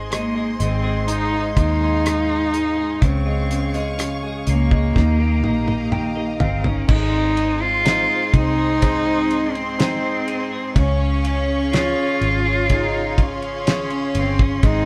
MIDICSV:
0, 0, Header, 1, 8, 480
1, 0, Start_track
1, 0, Key_signature, -4, "major"
1, 0, Tempo, 967742
1, 1498, Time_signature, 4, 2, 24, 8
1, 7367, End_track
2, 0, Start_track
2, 0, Title_t, "String section"
2, 0, Program_c, 0, 48
2, 0, Note_on_c, 0, 68, 68
2, 0, Note_on_c, 0, 72, 64
2, 0, Note_on_c, 0, 75, 63
2, 0, Note_on_c, 0, 84, 77
2, 528, Note_off_c, 0, 75, 0
2, 540, Note_on_c, 0, 77, 63
2, 1479, Note_off_c, 0, 68, 0
2, 1479, Note_off_c, 0, 72, 0
2, 1479, Note_off_c, 0, 84, 0
2, 1489, Note_off_c, 0, 77, 0
2, 1495, Note_on_c, 0, 68, 72
2, 1496, Note_on_c, 0, 77, 61
2, 1497, Note_on_c, 0, 85, 81
2, 2447, Note_off_c, 0, 68, 0
2, 2447, Note_off_c, 0, 77, 0
2, 2448, Note_off_c, 0, 85, 0
2, 2460, Note_on_c, 0, 82, 72
2, 2461, Note_on_c, 0, 67, 62
2, 2461, Note_on_c, 0, 77, 57
2, 2462, Note_on_c, 0, 75, 60
2, 3409, Note_off_c, 0, 82, 0
2, 3410, Note_off_c, 0, 67, 0
2, 3410, Note_off_c, 0, 75, 0
2, 3410, Note_off_c, 0, 77, 0
2, 3422, Note_on_c, 0, 68, 70
2, 3422, Note_on_c, 0, 72, 64
2, 3422, Note_on_c, 0, 84, 81
2, 3423, Note_on_c, 0, 75, 59
2, 5321, Note_off_c, 0, 68, 0
2, 5321, Note_off_c, 0, 72, 0
2, 5321, Note_off_c, 0, 75, 0
2, 5321, Note_off_c, 0, 84, 0
2, 5339, Note_on_c, 0, 68, 74
2, 5339, Note_on_c, 0, 77, 66
2, 5339, Note_on_c, 0, 85, 77
2, 5340, Note_on_c, 0, 73, 72
2, 6289, Note_off_c, 0, 85, 0
2, 6297, Note_on_c, 0, 84, 76
2, 7239, Note_off_c, 0, 68, 0
2, 7240, Note_off_c, 0, 73, 0
2, 7240, Note_off_c, 0, 77, 0
2, 7254, Note_on_c, 0, 72, 65
2, 7255, Note_on_c, 0, 68, 73
2, 7256, Note_on_c, 0, 75, 65
2, 7367, Note_off_c, 0, 68, 0
2, 7367, Note_off_c, 0, 72, 0
2, 7367, Note_off_c, 0, 75, 0
2, 7367, Note_off_c, 0, 84, 0
2, 7367, End_track
3, 0, Start_track
3, 0, Title_t, "Clean electric guitar"
3, 0, Program_c, 1, 27
3, 0, Note_on_c, 1, 44, 72
3, 0, Note_on_c, 1, 60, 52
3, 0, Note_on_c, 1, 68, 57
3, 55, Note_on_c, 1, 63, 53
3, 175, Note_off_c, 1, 68, 0
3, 177, Note_on_c, 1, 68, 62
3, 289, Note_off_c, 1, 63, 0
3, 295, Note_on_c, 1, 63, 52
3, 413, Note_off_c, 1, 68, 0
3, 415, Note_on_c, 1, 68, 58
3, 529, Note_off_c, 1, 44, 0
3, 535, Note_on_c, 1, 44, 74
3, 649, Note_off_c, 1, 63, 0
3, 654, Note_on_c, 1, 63, 56
3, 768, Note_off_c, 1, 60, 0
3, 774, Note_on_c, 1, 60, 53
3, 892, Note_off_c, 1, 68, 0
3, 894, Note_on_c, 1, 68, 59
3, 1011, Note_off_c, 1, 63, 0
3, 1017, Note_on_c, 1, 63, 53
3, 1133, Note_off_c, 1, 68, 0
3, 1135, Note_on_c, 1, 68, 65
3, 1248, Note_off_c, 1, 63, 0
3, 1254, Note_on_c, 1, 63, 53
3, 1374, Note_off_c, 1, 68, 0
3, 1376, Note_on_c, 1, 68, 54
3, 1498, Note_on_c, 1, 49, 78
3, 1544, Note_off_c, 1, 60, 0
3, 1544, Note_off_c, 1, 63, 0
3, 1545, Note_off_c, 1, 44, 0
3, 1545, Note_off_c, 1, 68, 0
3, 1615, Note_on_c, 1, 65, 57
3, 1859, Note_on_c, 1, 68, 62
3, 1973, Note_off_c, 1, 65, 0
3, 1975, Note_on_c, 1, 65, 55
3, 2091, Note_off_c, 1, 68, 0
3, 2097, Note_on_c, 1, 68, 66
3, 2216, Note_off_c, 1, 65, 0
3, 2218, Note_on_c, 1, 65, 55
3, 2331, Note_off_c, 1, 68, 0
3, 2337, Note_on_c, 1, 68, 63
3, 2459, Note_on_c, 1, 51, 77
3, 2506, Note_off_c, 1, 49, 0
3, 2506, Note_off_c, 1, 65, 0
3, 2506, Note_off_c, 1, 68, 0
3, 2578, Note_on_c, 1, 67, 54
3, 2697, Note_on_c, 1, 63, 57
3, 2814, Note_on_c, 1, 75, 62
3, 2931, Note_off_c, 1, 67, 0
3, 2937, Note_on_c, 1, 67, 54
3, 3051, Note_off_c, 1, 75, 0
3, 3053, Note_on_c, 1, 75, 63
3, 3168, Note_off_c, 1, 67, 0
3, 3174, Note_on_c, 1, 67, 54
3, 3291, Note_off_c, 1, 75, 0
3, 3293, Note_on_c, 1, 75, 60
3, 3412, Note_off_c, 1, 51, 0
3, 3414, Note_on_c, 1, 44, 85
3, 3464, Note_off_c, 1, 67, 0
3, 3533, Note_off_c, 1, 63, 0
3, 3535, Note_on_c, 1, 60, 60
3, 3653, Note_on_c, 1, 63, 57
3, 3770, Note_off_c, 1, 60, 0
3, 3776, Note_on_c, 1, 60, 55
3, 3891, Note_off_c, 1, 63, 0
3, 3897, Note_on_c, 1, 63, 62
3, 4011, Note_off_c, 1, 60, 0
3, 4017, Note_on_c, 1, 60, 62
3, 4130, Note_off_c, 1, 63, 0
3, 4136, Note_on_c, 1, 63, 54
3, 4255, Note_off_c, 1, 75, 0
3, 4257, Note_on_c, 1, 68, 62
3, 4372, Note_off_c, 1, 44, 0
3, 4378, Note_on_c, 1, 44, 78
3, 4494, Note_off_c, 1, 60, 0
3, 4500, Note_on_c, 1, 60, 52
3, 4611, Note_off_c, 1, 63, 0
3, 4617, Note_on_c, 1, 63, 55
3, 4733, Note_off_c, 1, 60, 0
3, 4739, Note_on_c, 1, 60, 60
3, 4851, Note_off_c, 1, 63, 0
3, 4857, Note_on_c, 1, 63, 56
3, 4971, Note_off_c, 1, 60, 0
3, 4977, Note_on_c, 1, 60, 56
3, 5091, Note_off_c, 1, 63, 0
3, 5097, Note_on_c, 1, 63, 54
3, 5217, Note_off_c, 1, 68, 0
3, 5219, Note_on_c, 1, 68, 58
3, 5335, Note_on_c, 1, 49, 79
3, 5386, Note_off_c, 1, 44, 0
3, 5386, Note_off_c, 1, 60, 0
3, 5386, Note_off_c, 1, 63, 0
3, 5454, Note_on_c, 1, 61, 64
3, 5574, Note_on_c, 1, 65, 58
3, 5691, Note_off_c, 1, 61, 0
3, 5697, Note_on_c, 1, 61, 57
3, 5813, Note_off_c, 1, 65, 0
3, 5819, Note_on_c, 1, 65, 64
3, 5932, Note_off_c, 1, 61, 0
3, 5938, Note_on_c, 1, 61, 64
3, 6051, Note_off_c, 1, 65, 0
3, 6057, Note_on_c, 1, 65, 58
3, 6174, Note_off_c, 1, 68, 0
3, 6176, Note_on_c, 1, 68, 67
3, 6289, Note_off_c, 1, 49, 0
3, 6295, Note_on_c, 1, 49, 80
3, 6412, Note_off_c, 1, 61, 0
3, 6418, Note_on_c, 1, 61, 61
3, 6533, Note_off_c, 1, 65, 0
3, 6539, Note_on_c, 1, 65, 62
3, 6652, Note_off_c, 1, 61, 0
3, 6658, Note_on_c, 1, 61, 61
3, 6773, Note_off_c, 1, 65, 0
3, 6779, Note_on_c, 1, 65, 54
3, 6894, Note_off_c, 1, 61, 0
3, 6900, Note_on_c, 1, 61, 58
3, 7015, Note_off_c, 1, 65, 0
3, 7020, Note_on_c, 1, 65, 59
3, 7139, Note_off_c, 1, 68, 0
3, 7141, Note_on_c, 1, 68, 58
3, 7260, Note_on_c, 1, 44, 76
3, 7305, Note_off_c, 1, 49, 0
3, 7307, Note_off_c, 1, 61, 0
3, 7307, Note_off_c, 1, 65, 0
3, 7367, Note_off_c, 1, 44, 0
3, 7367, Note_off_c, 1, 68, 0
3, 7367, End_track
4, 0, Start_track
4, 0, Title_t, "Cello"
4, 0, Program_c, 2, 42
4, 66, Note_on_c, 2, 58, 84
4, 286, Note_off_c, 2, 58, 0
4, 309, Note_on_c, 2, 60, 89
4, 527, Note_off_c, 2, 60, 0
4, 541, Note_on_c, 2, 63, 100
4, 763, Note_off_c, 2, 63, 0
4, 786, Note_on_c, 2, 63, 103
4, 1505, Note_on_c, 2, 60, 91
4, 1512, Note_off_c, 2, 63, 0
4, 1982, Note_off_c, 2, 60, 0
4, 2224, Note_on_c, 2, 58, 111
4, 3161, Note_off_c, 2, 58, 0
4, 3186, Note_on_c, 2, 60, 81
4, 3305, Note_on_c, 2, 61, 83
4, 3312, Note_off_c, 2, 60, 0
4, 3425, Note_on_c, 2, 63, 107
4, 3433, Note_off_c, 2, 61, 0
4, 3781, Note_on_c, 2, 65, 106
4, 3788, Note_off_c, 2, 63, 0
4, 4142, Note_on_c, 2, 63, 109
4, 4149, Note_off_c, 2, 65, 0
4, 4739, Note_on_c, 2, 60, 100
4, 4747, Note_off_c, 2, 63, 0
4, 5336, Note_off_c, 2, 60, 0
4, 5339, Note_on_c, 2, 61, 105
4, 5799, Note_off_c, 2, 61, 0
4, 5820, Note_on_c, 2, 65, 99
4, 6760, Note_off_c, 2, 65, 0
4, 7036, Note_on_c, 2, 60, 90
4, 7151, Note_on_c, 2, 61, 89
4, 7158, Note_off_c, 2, 60, 0
4, 7271, Note_on_c, 2, 63, 110
4, 7278, Note_off_c, 2, 61, 0
4, 7367, Note_off_c, 2, 63, 0
4, 7367, End_track
5, 0, Start_track
5, 0, Title_t, "Cello section"
5, 0, Program_c, 3, 48
5, 3419, Note_on_c, 3, 60, 102
5, 5319, Note_off_c, 3, 60, 0
5, 5339, Note_on_c, 3, 61, 107
5, 6298, Note_off_c, 3, 61, 0
5, 6298, Note_on_c, 3, 63, 99
5, 6538, Note_off_c, 3, 63, 0
5, 6539, Note_on_c, 3, 61, 112
5, 7259, Note_off_c, 3, 61, 0
5, 7262, Note_on_c, 3, 60, 116
5, 7367, Note_off_c, 3, 60, 0
5, 7367, End_track
6, 0, Start_track
6, 0, Title_t, "Grand piano"
6, 0, Program_c, 4, 0
6, 0, Control_c, 4, 64, 127
6, 0, Note_on_c, 4, 56, 50
6, 53, Note_off_c, 4, 56, 0
6, 53, Note_on_c, 4, 56, 52
6, 166, Note_off_c, 4, 56, 0
6, 173, Note_on_c, 4, 56, 49
6, 286, Note_off_c, 4, 56, 0
6, 294, Note_on_c, 4, 56, 50
6, 410, Note_off_c, 4, 56, 0
6, 418, Note_on_c, 4, 56, 52
6, 533, Note_on_c, 4, 63, 69
6, 645, Note_off_c, 4, 56, 0
6, 652, Note_on_c, 4, 56, 46
6, 771, Note_off_c, 4, 56, 0
6, 778, Note_on_c, 4, 56, 52
6, 889, Note_off_c, 4, 56, 0
6, 897, Note_on_c, 4, 56, 50
6, 1011, Note_off_c, 4, 56, 0
6, 1019, Note_on_c, 4, 56, 53
6, 1133, Note_off_c, 4, 56, 0
6, 1141, Note_on_c, 4, 56, 45
6, 1251, Note_off_c, 4, 56, 0
6, 1259, Note_on_c, 4, 56, 47
6, 1369, Note_off_c, 4, 56, 0
6, 1376, Note_on_c, 4, 56, 49
6, 1476, Note_off_c, 4, 63, 0
6, 1494, Note_off_c, 4, 56, 0
6, 1494, Note_on_c, 4, 49, 63
6, 1505, Control_c, 4, 64, 0
6, 1583, Control_c, 4, 64, 127
6, 1616, Note_on_c, 4, 56, 50
6, 1731, Note_off_c, 4, 49, 0
6, 1738, Note_on_c, 4, 49, 49
6, 1849, Note_off_c, 4, 56, 0
6, 1857, Note_on_c, 4, 56, 55
6, 1967, Note_off_c, 4, 49, 0
6, 1974, Note_on_c, 4, 49, 54
6, 2093, Note_off_c, 4, 56, 0
6, 2100, Note_on_c, 4, 56, 49
6, 2211, Note_off_c, 4, 49, 0
6, 2218, Note_on_c, 4, 49, 52
6, 2329, Note_off_c, 4, 56, 0
6, 2336, Note_on_c, 4, 56, 49
6, 2451, Note_off_c, 4, 49, 0
6, 2454, Note_off_c, 4, 56, 0
6, 2456, Note_on_c, 4, 51, 66
6, 2465, Control_c, 4, 64, 0
6, 2548, Control_c, 4, 64, 127
6, 2568, Note_off_c, 4, 51, 0
6, 2576, Note_on_c, 4, 51, 53
6, 2691, Note_off_c, 4, 51, 0
6, 2698, Note_on_c, 4, 51, 50
6, 2809, Note_off_c, 4, 51, 0
6, 2817, Note_on_c, 4, 51, 54
6, 2928, Note_off_c, 4, 51, 0
6, 2934, Note_on_c, 4, 79, 62
6, 2935, Note_on_c, 4, 51, 58
6, 3050, Note_off_c, 4, 51, 0
6, 3058, Note_on_c, 4, 51, 51
6, 3159, Note_off_c, 4, 79, 0
6, 3167, Note_off_c, 4, 51, 0
6, 3175, Note_on_c, 4, 51, 43
6, 3176, Note_on_c, 4, 77, 62
6, 3287, Note_off_c, 4, 51, 0
6, 3295, Note_on_c, 4, 51, 46
6, 3400, Note_off_c, 4, 77, 0
6, 3412, Note_on_c, 4, 56, 66
6, 3413, Note_off_c, 4, 51, 0
6, 3425, Control_c, 4, 64, 0
6, 3525, Control_c, 4, 64, 127
6, 3891, Note_on_c, 4, 63, 48
6, 3894, Note_on_c, 4, 68, 42
6, 3897, Note_on_c, 4, 72, 52
6, 4360, Note_off_c, 4, 63, 0
6, 4362, Note_off_c, 4, 68, 0
6, 4363, Note_off_c, 4, 72, 0
6, 4373, Note_on_c, 4, 63, 51
6, 4375, Note_on_c, 4, 68, 48
6, 4378, Note_on_c, 4, 72, 55
6, 4841, Note_off_c, 4, 63, 0
6, 4842, Note_off_c, 4, 68, 0
6, 4844, Note_off_c, 4, 72, 0
6, 4852, Note_on_c, 4, 63, 48
6, 4854, Note_on_c, 4, 68, 44
6, 4857, Note_on_c, 4, 72, 57
6, 5315, Note_off_c, 4, 56, 0
6, 5321, Note_off_c, 4, 63, 0
6, 5322, Note_off_c, 4, 68, 0
6, 5323, Note_off_c, 4, 72, 0
6, 5337, Note_on_c, 4, 49, 67
6, 5346, Control_c, 4, 64, 0
6, 5432, Control_c, 4, 64, 127
6, 5818, Note_on_c, 4, 61, 48
6, 5821, Note_on_c, 4, 65, 41
6, 5823, Note_on_c, 4, 68, 52
6, 6284, Note_off_c, 4, 61, 0
6, 6285, Note_off_c, 4, 65, 0
6, 6286, Note_off_c, 4, 68, 0
6, 6297, Note_on_c, 4, 61, 52
6, 6299, Note_on_c, 4, 65, 51
6, 6299, Note_on_c, 4, 68, 61
6, 6763, Note_off_c, 4, 61, 0
6, 6764, Note_off_c, 4, 65, 0
6, 6764, Note_off_c, 4, 68, 0
6, 6775, Note_on_c, 4, 61, 45
6, 6777, Note_on_c, 4, 65, 43
6, 6781, Note_on_c, 4, 68, 58
6, 7238, Note_off_c, 4, 49, 0
6, 7242, Note_off_c, 4, 61, 0
6, 7243, Note_off_c, 4, 65, 0
6, 7245, Note_off_c, 4, 68, 0
6, 7258, Note_on_c, 4, 56, 72
6, 7264, Control_c, 4, 64, 0
6, 7358, Control_c, 4, 64, 127
6, 7367, Note_off_c, 4, 56, 0
6, 7367, End_track
7, 0, Start_track
7, 0, Title_t, "Fingered electric bass"
7, 0, Program_c, 5, 33
7, 0, Note_on_c, 5, 32, 81
7, 278, Note_off_c, 5, 32, 0
7, 298, Note_on_c, 5, 32, 91
7, 758, Note_off_c, 5, 32, 0
7, 778, Note_on_c, 5, 39, 82
7, 1478, Note_off_c, 5, 39, 0
7, 1499, Note_on_c, 5, 37, 82
7, 2199, Note_off_c, 5, 37, 0
7, 2218, Note_on_c, 5, 37, 92
7, 2441, Note_off_c, 5, 37, 0
7, 2460, Note_on_c, 5, 39, 102
7, 2697, Note_off_c, 5, 39, 0
7, 2697, Note_on_c, 5, 34, 88
7, 3158, Note_off_c, 5, 34, 0
7, 3180, Note_on_c, 5, 31, 82
7, 3402, Note_off_c, 5, 31, 0
7, 3417, Note_on_c, 5, 32, 89
7, 3998, Note_off_c, 5, 32, 0
7, 4135, Note_on_c, 5, 36, 84
7, 5317, Note_off_c, 5, 36, 0
7, 5336, Note_on_c, 5, 37, 86
7, 5917, Note_off_c, 5, 37, 0
7, 6057, Note_on_c, 5, 32, 91
7, 6998, Note_off_c, 5, 32, 0
7, 7018, Note_on_c, 5, 31, 79
7, 7241, Note_off_c, 5, 31, 0
7, 7258, Note_on_c, 5, 32, 89
7, 7367, Note_off_c, 5, 32, 0
7, 7367, End_track
8, 0, Start_track
8, 0, Title_t, "Drums"
8, 58, Note_on_c, 9, 42, 82
8, 63, Note_on_c, 9, 37, 100
8, 108, Note_off_c, 9, 42, 0
8, 113, Note_off_c, 9, 37, 0
8, 297, Note_on_c, 9, 42, 65
8, 347, Note_off_c, 9, 42, 0
8, 536, Note_on_c, 9, 42, 82
8, 585, Note_off_c, 9, 42, 0
8, 777, Note_on_c, 9, 36, 85
8, 778, Note_on_c, 9, 42, 58
8, 827, Note_off_c, 9, 36, 0
8, 828, Note_off_c, 9, 42, 0
8, 1021, Note_on_c, 9, 42, 95
8, 1025, Note_on_c, 9, 37, 105
8, 1070, Note_off_c, 9, 42, 0
8, 1075, Note_off_c, 9, 37, 0
8, 1258, Note_on_c, 9, 42, 67
8, 1308, Note_off_c, 9, 42, 0
8, 1497, Note_on_c, 9, 42, 74
8, 1498, Note_on_c, 9, 36, 105
8, 1547, Note_off_c, 9, 42, 0
8, 1548, Note_off_c, 9, 36, 0
8, 1740, Note_on_c, 9, 42, 66
8, 1789, Note_off_c, 9, 42, 0
8, 1855, Note_on_c, 9, 42, 46
8, 1905, Note_off_c, 9, 42, 0
8, 1978, Note_on_c, 9, 42, 96
8, 1984, Note_on_c, 9, 37, 93
8, 2028, Note_off_c, 9, 42, 0
8, 2033, Note_off_c, 9, 37, 0
8, 2216, Note_on_c, 9, 42, 64
8, 2265, Note_off_c, 9, 42, 0
8, 2338, Note_on_c, 9, 36, 76
8, 2388, Note_off_c, 9, 36, 0
8, 2460, Note_on_c, 9, 36, 67
8, 2465, Note_on_c, 9, 38, 49
8, 2509, Note_off_c, 9, 36, 0
8, 2515, Note_off_c, 9, 38, 0
8, 2697, Note_on_c, 9, 48, 61
8, 2746, Note_off_c, 9, 48, 0
8, 2816, Note_on_c, 9, 48, 60
8, 2866, Note_off_c, 9, 48, 0
8, 2936, Note_on_c, 9, 47, 74
8, 2986, Note_off_c, 9, 47, 0
8, 3175, Note_on_c, 9, 43, 93
8, 3224, Note_off_c, 9, 43, 0
8, 3295, Note_on_c, 9, 43, 80
8, 3345, Note_off_c, 9, 43, 0
8, 3414, Note_on_c, 9, 49, 95
8, 3416, Note_on_c, 9, 36, 102
8, 3464, Note_off_c, 9, 49, 0
8, 3466, Note_off_c, 9, 36, 0
8, 3655, Note_on_c, 9, 51, 58
8, 3705, Note_off_c, 9, 51, 0
8, 3896, Note_on_c, 9, 51, 86
8, 3901, Note_on_c, 9, 38, 101
8, 3946, Note_off_c, 9, 51, 0
8, 3951, Note_off_c, 9, 38, 0
8, 4134, Note_on_c, 9, 51, 56
8, 4135, Note_on_c, 9, 36, 92
8, 4184, Note_off_c, 9, 36, 0
8, 4184, Note_off_c, 9, 51, 0
8, 4375, Note_on_c, 9, 51, 78
8, 4378, Note_on_c, 9, 36, 77
8, 4424, Note_off_c, 9, 51, 0
8, 4427, Note_off_c, 9, 36, 0
8, 4615, Note_on_c, 9, 51, 53
8, 4665, Note_off_c, 9, 51, 0
8, 4738, Note_on_c, 9, 51, 41
8, 4787, Note_off_c, 9, 51, 0
8, 4858, Note_on_c, 9, 51, 83
8, 4863, Note_on_c, 9, 38, 112
8, 4908, Note_off_c, 9, 51, 0
8, 4912, Note_off_c, 9, 38, 0
8, 5097, Note_on_c, 9, 51, 59
8, 5147, Note_off_c, 9, 51, 0
8, 5336, Note_on_c, 9, 36, 96
8, 5336, Note_on_c, 9, 51, 68
8, 5385, Note_off_c, 9, 51, 0
8, 5386, Note_off_c, 9, 36, 0
8, 5577, Note_on_c, 9, 51, 63
8, 5627, Note_off_c, 9, 51, 0
8, 5819, Note_on_c, 9, 51, 76
8, 5825, Note_on_c, 9, 38, 108
8, 5869, Note_off_c, 9, 51, 0
8, 5874, Note_off_c, 9, 38, 0
8, 6058, Note_on_c, 9, 51, 54
8, 6108, Note_off_c, 9, 51, 0
8, 6296, Note_on_c, 9, 51, 70
8, 6299, Note_on_c, 9, 36, 77
8, 6346, Note_off_c, 9, 51, 0
8, 6349, Note_off_c, 9, 36, 0
8, 6537, Note_on_c, 9, 36, 90
8, 6538, Note_on_c, 9, 51, 54
8, 6587, Note_off_c, 9, 36, 0
8, 6588, Note_off_c, 9, 51, 0
8, 6658, Note_on_c, 9, 51, 37
8, 6707, Note_off_c, 9, 51, 0
8, 6780, Note_on_c, 9, 51, 81
8, 6784, Note_on_c, 9, 38, 112
8, 6830, Note_off_c, 9, 51, 0
8, 6834, Note_off_c, 9, 38, 0
8, 6895, Note_on_c, 9, 51, 36
8, 6945, Note_off_c, 9, 51, 0
8, 7016, Note_on_c, 9, 51, 65
8, 7066, Note_off_c, 9, 51, 0
8, 7139, Note_on_c, 9, 36, 97
8, 7189, Note_off_c, 9, 36, 0
8, 7256, Note_on_c, 9, 51, 72
8, 7257, Note_on_c, 9, 36, 96
8, 7305, Note_off_c, 9, 51, 0
8, 7307, Note_off_c, 9, 36, 0
8, 7367, End_track
0, 0, End_of_file